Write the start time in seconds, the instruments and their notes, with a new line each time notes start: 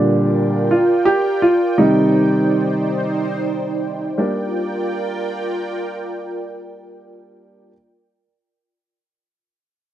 Already playing: grand piano A#2 D3 G3 D4, analog synth pad F4 A#4 D5 G5
0.71 grand piano F4
1.05 grand piano G4
1.42 grand piano F4
1.77 grand piano C3 D#3 G3 D#4, analog synth pad D#4 C5
4.18 grand piano G3 A#3 D4, analog synth pad F4 A#4 D5 G5